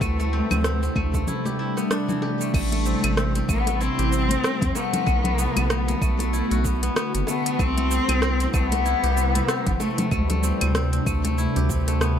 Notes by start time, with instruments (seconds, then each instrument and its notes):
Already playing: cello A3, guzheng C4 E4 G4
0.01 analog synth bass D2, ambient pad C3 G3 A3 D4, guzheng A3, kick, claves, shaker
0.19 guzheng A3, high conga, shaker
0.33 guzheng C4
0.51 analog synth bass D2, guzheng C4, low conga, claves, shaker
0.64 guzheng C4, cross-stick, shaker
0.83 guzheng C4, shaker
0.96 analog synth bass D2, guzheng A3, kick, high conga, claves
1.14 guzheng A3, kick, high bongo, shaker
1.28 guzheng E4, low conga, shaker
1.45 guzheng G4, high bongo, high conga, shaker
1.59 guzheng E4
1.77 guzheng B3, cross-stick, shaker
1.91 guzheng D4, cross-stick, shaker
2.09 guzheng E3, low conga, shaker
2.22 guzheng G4, high bongo
2.41 guzheng A3, shaker
2.53 analog synth bass A1, ambient pad C3 G3 A3 E4, guzheng A3, cello A3, kick, crash, claves, shaker
2.72 guzheng A3, closed hi-hat, high conga
2.86 guzheng C4, shaker
3.04 analog synth bass A1, guzheng C4, closed hi-hat, high conga, claves, shaker
3.17 guzheng C4, cross-stick, shaker
3.35 guzheng C4, closed hi-hat, shaker
3.49 analog synth bass A1, guzheng A3, cello B3, kick, claves, shaker
3.67 guzheng A3, closed hi-hat, high bongo, high conga, shaker
3.80 cello C4, guzheng E4, shaker
3.99 analog synth bass A1, guzheng G4, closed hi-hat, shaker
4.12 guzheng C4, shaker
4.29 guzheng C4, closed hi-hat, high conga, shaker
4.43 guzheng C4, cross-stick, shaker
4.61 analog synth bass E2, guzheng C4, kick, closed hi-hat, low conga, shaker
4.75 guzheng A3, cello B3, high bongo, shaker
4.93 guzheng A3, closed hi-hat, low conga, shaker
5.06 analog synth bass B1, ambient pad D3 B3 F#4, guzheng A3, kick, claves, shaker
5.24 guzheng A3, closed hi-hat, high bongo, low conga
5.38 guzheng B3, shaker
5.56 analog synth bass B1, guzheng B3, closed hi-hat, high conga, claves, shaker
5.70 guzheng B3, cross-stick, shaker
5.88 guzheng B3, closed hi-hat, shaker
6.01 analog synth bass B1, cello A3, guzheng A3, kick, claves, shaker
6.19 guzheng A3, closed hi-hat, high bongo, high conga, shaker
6.33 guzheng E4, shaker
6.50 analog synth bass B1, guzheng F#4, closed hi-hat, high bongo, shaker
6.65 guzheng B3, kick, shaker
6.83 guzheng B3, closed hi-hat, shaker
6.96 guzheng B3, cross-stick, shaker
7.14 analog synth bass F#1, guzheng B3, closed hi-hat, shaker
7.27 guzheng A3, cello B3, high bongo, shaker
7.46 guzheng A3, closed hi-hat, shaker
7.59 analog synth bass C2, ambient pad C3 G3 E4 B4, guzheng A3, cello C4, kick, claves, shaker
7.77 guzheng A3, closed hi-hat, high conga
7.91 guzheng C4, shaker
8.08 analog synth bass C2, guzheng C4, closed hi-hat, high conga, claves, shaker
8.22 guzheng C4, cross-stick, shaker
8.40 guzheng C4, closed hi-hat, shaker
8.54 analog synth bass C2, guzheng A3, cello B3, kick, claves, shaker
8.72 guzheng A3, closed hi-hat, high bongo, high conga, shaker
8.85 guzheng E4, shaker
9.03 analog synth bass C2, guzheng G4, closed hi-hat, shaker
9.17 guzheng C4, shaker
9.35 guzheng C4, closed hi-hat, high conga, shaker
9.48 guzheng C4, cross-stick, shaker
9.66 analog synth bass G1, guzheng C4, kick, closed hi-hat, low conga, shaker
9.79 cello A3, guzheng A3, high bongo, shaker
9.98 guzheng A3, closed hi-hat, low conga, shaker
10.10 analog synth bass D2, cello G3, ambient pad A3 D4, guzheng A3, kick, claves, shaker
10.30 guzheng A3, closed hi-hat, high bongo, low conga, shaker
10.43 guzheng C4, shaker
10.61 analog synth bass D2, guzheng C4, closed hi-hat, high conga, claves, shaker
10.75 guzheng C4, cross-stick, shaker
10.93 guzheng C4, closed hi-hat, shaker
11.06 analog synth bass D2, guzheng A3, kick, claves, shaker
11.24 guzheng A3, closed hi-hat, high bongo, high conga, shaker
11.38 guzheng E4, shaker
11.56 analog synth bass D2, guzheng G4, closed hi-hat, high bongo, shaker
11.70 guzheng C4, kick, shaker
11.88 guzheng A3, cross-stick, closed hi-hat, shaker
12.01 guzheng B3, cross-stick, shaker